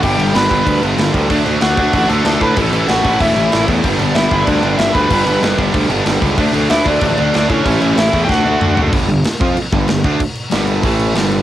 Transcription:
<<
  \new Staff \with { instrumentName = "Lead electric guitar" } { \time 4/4 \key g \lydian \tempo 4 = 189 <g' g''>4 <b' b''>4. r4. | r4 <fis' fis''>4 <fis' fis''>8 <a' a''>8 <a' a''>8 <b' b''>8 | <a' a''>4 <fis' fis''>4 <e' e''>4. r8 | r4 <e' e''>4 <d' d''>4 <e' e''>8 <b' b''>8~ |
<b' b''>4. r2 r8 | r4 <e' e''>8 <d' d''>4 <d' d''>4 <cis' cis''>8~ | <cis' cis''>4 <e' e''>8. <g' g''>16 <fis' fis''>4. r8 | \key a \minor r1 |
r1 | }
  \new Staff \with { instrumentName = "Distorted electric guitar" } { \time 4/4 \key g \lydian <g, d g b d'>4. <g, d g b d'>2~ <g, d g b d'>8 | <d fis a d'>4. <d fis a d'>2~ <d fis a d'>8 | <a, e a cis' e'>4. <a, e a cis' e'>2~ <a, e a cis' e'>8 | <g, d g b d'>4. <g, d g b d'>2~ <g, d g b d'>8 |
<g, d g b d'>4. <g, d g b d'>2~ <g, d g b d'>8 | <d fis a d'>4. <d fis a d'>2~ <d fis a d'>8 | <a, e a cis' e'>4. <a, e a cis' e'>8 <d a d' fis'>4. <d a d' fis'>8 | \key a \minor r1 |
r1 | }
  \new Staff \with { instrumentName = "Distorted electric guitar" } { \clef bass \time 4/4 \key g \lydian <g, d g>8 <g, d g>8 <g, d g>8 <g, d g>8 <g, d g>8 <g, d g>8 <g, d g>8 <g, d g>8 | <d a d'>8 <d a d'>8 <d a d'>8 <d a d'>8 <d a d'>8 <d a d'>8 <d a d'>8 <d a d'>8 | <a, e a>8 <a, e a>8 <a, e a>8 <a, e a>8 <a, e a>8 <a, e a>8 <a, e a>8 <a, e a>8 | <g, d g>8 <g, d g>8 <g, d g>8 <g, d g>8 <g, d g>8 <g, d g>8 <g, d g>8 <g, d g>8 |
<g, d g>8 <g, d g>8 <g, d g>8 <g, d g>8 <g, d g>8 <g, d g>8 <g, d g>8 <g, d g>8 | <d a d'>8 <d a d'>8 <d a d'>8 <d a d'>8 <d a d'>8 <d a d'>8 <d a d'>8 <d a d'>8 | <a, e a>8 <a, e a>8 <a, e a>8 <a, e a>8 <d a d'>8 <d a d'>8 <d a d'>8 <d a d'>8 | \key a \minor <g, d g>8 <g, d>8 r8 <f c' f'>8 r8 <g, d g>8 <g, d>8 <d a d'>8 |
r4 <g, d g>4 <a, e a>4 <g, d g>4 | }
  \new Staff \with { instrumentName = "Distorted electric guitar" } { \clef bass \time 4/4 \key g \lydian <g, d g>8 <g, d g>8 <g, d g>8 <g, d g>8 <g, d g>8 <g, d g>8 <g, d g>8 <g, d g>8 | <d a d'>8 <d a d'>8 <d a d'>8 <d a d'>8 <d a d'>8 <d a d'>8 <d a d'>8 <d a d'>8 | <a, e a>8 <a, e a>8 <a, e a>8 <a, e a>8 <a, e a>8 <a, e a>8 <a, e a>8 <a, e a>8 | <g, d g>8 <g, d g>8 <g, d g>8 <g, d g>8 <g, d g>8 <g, d g>8 <g, d g>8 <g, d g>8 |
<g, d g>8 <g, d g>8 <g, d g>8 <g, d g>8 <g, d g>8 <g, d g>8 <g, d g>8 <g, d g>8 | <d a d'>8 <d a d'>8 <d a d'>8 <d a d'>8 <d a d'>8 <d a d'>8 <d a d'>8 <d a d'>8 | <a, e a>8 <a, e a>8 <a, e a>8 <a, e a>8 <d a d'>8 <d a d'>8 <d a d'>8 <d a d'>8 | \key a \minor <g, d g>8 <g, d>8 r8 <f c' f'>8 r8 <g, d g>8 <g, d>8 <d a d'>8 |
r4 <g, d g>4 <a, e a>4 <g, d g>4 | }
  \new Staff \with { instrumentName = "Picked electric bass" } { \clef bass \time 4/4 \key g \lydian g,,8 g,,8 g,,8 g,,8 d,8 g,,8 g,,8 d,8 | d,8 d,8 d,8 d,8 a,,8 d,8 d,8 a,8 | a,,8 a,,8 a,,8 a,,8 e,,8 a,,8 a,,8 e,8 | g,,8 g,,8 g,,8 g,,8 d,8 g,,8 g,,8 d,8 |
g,,8 g,,8 g,,8 g,,8 d,8 g,,8 g,,8 cis,8 | d,8 d,8 d,8 d,8 a,,8 d,8 d,8 a,8 | a,,8 a,,8 a,,8 e,8 d,8 d,8 d,8 fis,,8 | \key a \minor g,,8 g,,8 r8 f,8 r8 g,,8 g,,8 d,8 |
r4 g,,4 a,,4 g,,4 | }
  \new DrumStaff \with { instrumentName = "Drums" } \drummode { \time 4/4 <cymc bd>8 cymc8 <cymc sn>8 <cymc bd>8 <cymc bd>8 cymc8 <cymc sn>8 <cymc bd>8 | <cymc bd>8 cymc8 <cymc sn>8 <cymc bd>8 <cymc bd>8 cymc8 <cymc sn>8 <cymc bd>8 | <cymc bd>8 cymc8 <cymc sn>8 <cymc bd>8 <cymc bd>8 cymc8 <cymc sn>8 <cymc bd>8 | <cymc bd>8 cymc8 <cymc sn>8 <cymc bd>8 <cymc bd>8 cymc8 <cymc sn>8 <cymc bd>8 |
<cymc bd>8 cymc8 <cymc sn>8 <cymc bd>8 <cymc bd>8 cymc8 <cymc sn>8 <cymc bd>8 | <cymc bd>8 cymc8 <cymc sn>8 <cymc bd>8 <cymc bd>8 cymc8 <cymc sn>8 <cymc bd>8 | <cymc bd>8 cymc8 <cymc sn>8 <cymc bd>8 <bd sn>4 toml8 tomfh8 | <cymc bd>8 cymc8 <cymc sn>8 <cymc bd>8 cymc8 bd8 <cymc sn>8 <cymc bd>8 |
<cymc bd>8 cymc8 <cymc sn>8 cymc8 <cymc bd>8 cymc8 <cymc sn>8 cymc8 | }
>>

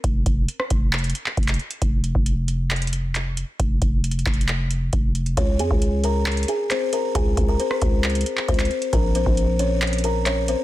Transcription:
<<
  \new Staff \with { instrumentName = "Kalimba" } { \time 4/4 \key des \lydian \tempo 4 = 135 r1 | r1 | r1 | <des' des''>8 <aes' aes''>4 <bes' bes''>8 r8 <aes' aes''>8 <c' c''>8 <bes' bes''>8 |
<aes' aes''>8. <bes' bes''>16 <c' c''>2 <c' c''>4 | <bes' bes''>8 <c' c''>4 <des' des''>8 r8 <bes' bes''>8 <des' des''>8 <c' c''>8 | }
  \new Staff \with { instrumentName = "808-style bass" } { \clef bass \time 4/4 \key des \lydian f,,8 f,,8 r8 f,,4 r8 f,,8 r8 | f,,8. f,,2. r16 | f,,8 f,,4 f,,4. f,,4 | des,8 f,16 des,4.~ des,16 r4. |
des,8 des,8 r8 des,4 r8 des,8 r8 | bes,,8. bes,,2. r16 | }
  \new DrumStaff \with { instrumentName = "Drums" } \drummode { \time 4/4 <hh bd>8 <hh bd>8 hh16 ss16 <hh bd>8 <hc hh>32 hh32 hh32 hh32 hh16 hc16 <hh bd>32 hh32 <hc hh>32 hh32 hh16 hh16 | <hh bd>8 hh16 bd16 hh8 hh8 <hc hh>32 hh32 hh32 hh32 hh8 <hc hh>8 hh8 | <hh bd>8 <hh bd>8 \tuplet 3/2 { hh16 hh16 hh16 <hc hh bd>16 hh16 hh16 } <hc hh>8 hh8 <hh bd>8 hh16 hh16 | <hh bd>8 hh16 bd16 hh8 hh8 <hc hh>32 hh32 hh32 hh32 hh8 <hc hh>8 hh8 |
<hh bd>8 <hh bd>8 hh16 ss16 <hh bd>8 <hc hh>32 hh32 hh32 hh32 hh16 hc16 <hh bd>32 hh32 <hc hh>32 hh32 hh16 hh16 | <hh bd>8 hh16 bd16 hh8 hh8 <hc hh>32 hh32 hh32 hh32 hh8 <hc hh>8 hh8 | }
>>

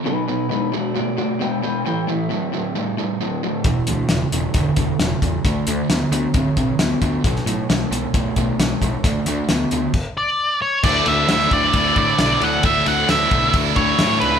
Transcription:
<<
  \new Staff \with { instrumentName = "Lead electric guitar" } { \time 4/4 \key d \lydian \tempo 4 = 133 r1 | r1 | r1 | r1 |
r1 | r2 r8 d''4 cis''8 | d''8 e''8 e''8 d''4 d''8 d''8 fis''8 | e''8 fis''8 e''4 r8 cis''4 b'8 | }
  \new Staff \with { instrumentName = "Electric slide guitar" } { \time 4/4 \key d \lydian <dis' b'>8 <dis' b'>8 <dis' b'>8 <fis' d''>8 <fis' d''>8 <fis' d''>8 <b' g''>8 <b' g''>8 | <b' g''>8 e''2. r8 | r1 | r1 |
r1 | r1 | r1 | r1 | }
  \new Staff \with { instrumentName = "Distorted electric guitar" } { \clef bass \time 4/4 \key d \lydian <b, fis>8 <b, fis>8 <b, gis>8 <b, gis>8 <b, a>8 <b, a>8 <b, gis>8 <b, gis>8 | <a, e>8 <a, e>8 <a, fis>8 <a, fis>8 <a, g>8 <a, g>8 <a, fis>8 <a, fis>8 | <e, b,>8 <e, b,>8 <e, cis>8 <e, cis>8 <e, d>8 <e, d>8 <e, cis>8 <e, cis>8 | <d a>8 <d a>8 <d b>8 <d b>8 <d c'>8 <d c'>8 <d b>8 <d b>8 |
<b, fis>8 <b, fis>8 <b, gis>8 <b, gis>8 <b, a>8 <b, a>8 <b, gis>8 <b, gis>8 | <d a>8 <d a>8 <d b>8 <d b>8 r2 | <d a d' e'>1 | <d a d' e'>1 | }
  \new Staff \with { instrumentName = "Overdriven electric guitar" } { \clef bass \time 4/4 \key d \lydian <b, fis>8 <b, fis>8 <b, gis>8 <b, gis>8 <b, a>8 <b, a>8 <b, gis>8 <b, gis>8 | <a, e>8 <a, e>8 <a, fis>8 <a, fis>8 <a, g>8 <a, g>8 <a, fis>8 <a, fis>8 | <e, b,>8 <e, b,>8 <e, cis>8 <e, cis>8 <e, d>8 <e, d>8 <e, cis>8 <e, cis>8 | <d a>8 <d a>8 <d b>8 <d b>8 <d c'>8 <d c'>8 <d b>8 <d b>8 |
<b, fis>8 <b, fis>8 <b, gis>8 <b, gis>8 <b, a>8 <b, a>8 <b, gis>8 <b, gis>8 | <d a>8 <d a>8 <d b>8 <d b>8 r2 | <d a d'>8 <d a>8 <d a>8 <d a>8 <d a>8 <d a>8 <d a d'>8 <d a d'>8 | <d a>8 <d a>8 <d a>8 <d a>8 <d a>8 <d a>8 <d a d'>8 <d a d'>8 | }
  \new Staff \with { instrumentName = "Picked electric bass" } { \clef bass \time 4/4 \key d \lydian r1 | r1 | e,,8 d,8 e,,8 e,,8 e,,8 e,,8 e,,8 e,8 | d,8 d,8 d,8 d,8 d,8 b,,8 d,8 d,8 |
b,,8 a,8 b,,8 b,,8 b,,8 b,,8 b,,8 b,,8 | d,8 d,8 d,8 d,8 r2 | d,8 d,8 d,8 d,8 d,8 a,8 b,,8 d,8 | d,8 d,8 d,8 b,,8 d,8 d,8 a,8 cis,8 | }
  \new DrumStaff \with { instrumentName = "Drums" } \drummode { \time 4/4 r4 r4 r4 r4 | r4 r4 r4 r4 | <hh bd>8 hh8 <hh sn>8 hh8 <hh bd>8 <hh bd>8 <hh sn>8 <hh bd>8 | <hh bd>8 hh8 <hh sn>8 hh8 <hh bd>8 <hh bd>8 <hh sn>8 <hh bd>8 |
<hh bd>16 sn16 hh8 <hh sn>8 hh8 <hh bd>8 <hh bd>8 <hh sn>8 <hh bd>8 | <hh bd>8 hh8 <hh sn>8 hh8 <cymc bd>4 r4 | <cymc bd>8 cymr8 <cymr sn>16 sn16 <bd cymr>8 <bd cymr>8 <bd cymr>8 <cymr sn>8 cymr8 | <bd cymr>8 cymr8 <cymr sn>8 <bd cymr>8 <bd cymr>8 <bd cymr>8 <cymr sn>8 cymr8 | }
>>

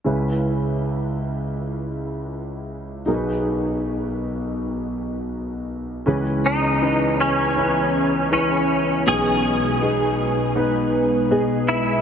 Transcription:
<<
  \new Staff \with { instrumentName = "Clean electric guitar" } { \time 4/4 \key cis \minor \tempo 4 = 80 r1 | r1 | r8 dis'4 cis'4. cis'4 | gis'2 r4. e'8 | }
  \new Staff \with { instrumentName = "Grand piano" } { \time 4/4 \key cis \minor <cis' e' b'>1 | <dis' gis' ais' b'>1 | <e cis' b'>4 <e cis' b'>4 <cis' e' b'>4 <cis' e' b'>4 | <b dis' gis'>4 <b dis' gis'>4 <b dis' b'>4 <b gis' dis''>4 | }
  \new Staff \with { instrumentName = "Grand piano" } { \clef bass \time 4/4 \key cis \minor <cis, cis>1 | <b,, b,>1 | <cis, cis>1 | <b,, b,>1 | }
  \new Staff \with { instrumentName = "Ambient pad" } { \time 4/4 \key cis \minor << { r1 | r1 | <gis' b'>1~ | <gis' b'>1 | } \\ { r1 | r1 | <e b cis'>1 | <b, gis>1 | } >> }
>>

